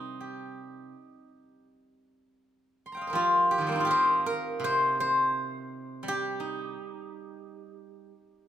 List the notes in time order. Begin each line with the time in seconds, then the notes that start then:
Already playing: C3 G3 C4 D#4 A#4 C5
0.21 G4
2.86 C6
2.92 G5 A#5
2.97 F5
3.01 D#5
3.07 A#4 C5
3.13 F3 F4 G4
3.51 G4
3.58 D#3 F3
3.67 G3 A#3
3.72 C4 D#4
3.80 F4
3.85 G4 A#4
3.91 C5
4.26 A#4
4.60 C3
4.64 C5
5.00 C5
6.03 G3
6.08 G4
6.40 D#4